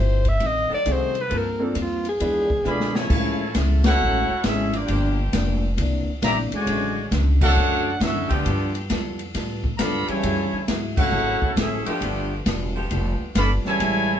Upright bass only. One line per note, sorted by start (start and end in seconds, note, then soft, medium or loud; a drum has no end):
0.00 0.39 G1 medium
0.40 0.68 A1 medium
0.71 muted upright bass stroke soft
0.85 1.29 C2 medium
1.31 1.74 G2 medium
1.75 2.19 F2 medium
2.20 2.64 E2 medium
2.65 3.08 B2 medium
3.10 3.53 A2 medium
3.55 3.98 C#2 medium
3.99 4.27 A1 medium
4.29 muted upright bass stroke soft
4.44 4.87 G#1 loud
4.89 5.32 G1 medium
5.33 5.77 F1 loud
5.77 6.05 C2 medium
6.07 muted upright bass stroke soft
6.22 6.50 A#1 loud
6.52 muted upright bass stroke soft
6.67 7.10 A1 loud
7.11 7.55 C#2 loud
7.56 7.99 F#2 medium
8.00 8.15 G#2 loud
8.15 8.30 F#2 medium
8.30 8.44 D2 medium
8.46 8.89 G2 medium
8.90 9.33 F2 loud
9.34 9.78 A2 medium
9.79 10.06 G2 loud
10.08 muted upright bass stroke soft
10.23 10.51 F#2 medium
10.53 muted upright bass stroke soft
10.68 11.11 G#2 medium
11.12 11.40 G#1 medium
11.42 muted upright bass stroke soft
11.56 11.84 A1 medium
11.86 muted upright bass stroke soft
12.01 12.45 G1 medium
12.46 12.89 E1 loud
12.91 13.18 F1 medium
13.20 muted upright bass stroke soft
13.35 13.63 G1 loud
13.64 muted upright bass stroke soft
13.80 14.20 A1 medium